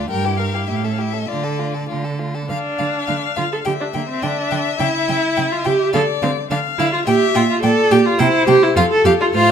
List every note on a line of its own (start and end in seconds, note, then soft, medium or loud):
0.10 0.62 G2 medium
0.10 0.26 G4 medium
0.10 0.27 A#4 medium
0.10 0.38 G5 medium
0.24 0.40 E4 medium
0.24 0.41 G4 medium
0.39 0.55 G4 soft
0.39 0.56 A#4 medium
0.39 0.69 F5 medium
0.53 0.68 E4 soft
0.53 0.68 G4 medium
0.68 1.22 A2 medium
0.68 0.85 E4 soft
0.68 0.86 G4 soft
0.68 0.78 E5 medium
0.76 0.86 F5 medium
0.83 1.00 C#4 soft
0.83 1.00 A4 soft
0.83 0.94 E5 medium
0.93 1.02 F5 medium
0.98 1.15 E4 soft
0.98 1.15 G4 soft
0.98 1.29 E5 medium
1.13 1.29 C#4 soft
1.13 1.27 A4 soft
1.28 1.83 D3 medium
1.28 1.45 A3 medium
1.28 1.45 F4 medium
1.28 1.89 D5 medium
1.44 1.61 D4 soft
1.44 1.60 A4 soft
1.59 1.75 A3 soft
1.59 1.75 F4 soft
1.74 1.89 D4 soft
1.74 1.88 A4 soft
1.89 2.43 D3 medium
1.89 2.06 A3 soft
1.89 2.06 F4 soft
2.04 2.21 D4 soft
2.04 2.20 A4 soft
2.19 2.36 A3 soft
2.19 2.36 F4 soft
2.35 2.49 D4 medium
2.35 2.49 A4 soft
2.49 2.58 D3 medium
2.49 3.33 D4 medium
2.49 2.57 F5 medium
2.49 3.67 F5 medium
2.78 2.87 D3 medium
2.78 2.86 F5 medium
3.07 3.16 D3 medium
3.07 3.15 F5 medium
3.36 3.45 D3 medium
3.36 3.43 F4 medium
3.36 3.44 F5 medium
3.52 3.58 A4 medium
3.65 3.74 D3 medium
3.65 3.71 G4 medium
3.65 5.93 E5 loud
3.65 3.73 G5 medium
3.80 3.86 D4 medium
3.94 4.02 D3 medium
3.94 4.08 A#3 medium
3.94 4.02 G5 medium
4.09 4.25 C4 medium
4.22 4.31 D3 medium
4.22 4.79 D4 medium
4.22 4.30 G5 medium
4.51 4.59 D3 medium
4.51 4.59 G5 medium
4.80 4.88 C#3 medium
4.80 5.54 E4 loud
4.80 4.88 G5 medium
5.09 5.17 C#3 medium
5.09 5.17 G5 medium
5.37 5.45 C#3 medium
5.37 5.45 G5 medium
5.52 5.67 F4 medium
5.65 5.74 C#3 medium
5.65 5.94 G4 loud
5.65 5.73 G5 medium
5.93 6.02 D3 medium
5.93 6.02 A4 loud
5.93 6.49 D5 loud
5.93 6.01 F5 medium
6.22 6.30 D3 medium
6.22 6.31 C4 loud
6.22 6.30 F5 medium
6.50 6.58 D3 medium
6.50 6.58 D4 medium
6.50 7.06 F5 medium
6.50 6.59 F5 medium
6.78 6.87 D3 medium
6.78 6.92 E4 loud
6.78 6.87 F5 medium
6.93 6.99 F4 loud
7.06 7.15 A#2 medium
7.06 7.34 G4 loud
7.06 7.62 E5 loud
7.06 7.15 G5 medium
7.35 7.43 A#2 medium
7.35 7.41 F4 loud
7.35 7.43 G5 medium
7.50 7.62 F4 loud
7.63 7.71 A#2 medium
7.63 7.93 A4 loud
7.63 8.18 D5 loud
7.63 7.71 G5 medium
7.91 7.99 A#2 medium
7.91 8.07 G4 loud
7.91 7.99 G5 medium
8.06 8.20 F4 loud
8.19 8.28 C3 loud
8.19 8.47 E4 loud
8.19 8.75 C5 loud
8.19 8.27 G5 medium
8.47 8.56 C3 loud
8.47 8.65 G4 loud
8.47 8.55 G5 medium
8.63 8.76 E4 loud
8.76 8.84 F2 medium
8.76 8.82 F4 loud
8.76 9.36 A4 medium
8.76 8.85 F5 medium
8.92 9.05 A4 loud
9.04 9.12 F2 loud
9.04 9.11 G4 loud
9.04 9.13 F5 medium
9.21 9.26 F4 loud
9.33 9.52 A2 medium
9.33 9.51 F4 loud
9.33 9.52 C5 loud
9.33 9.52 F5 medium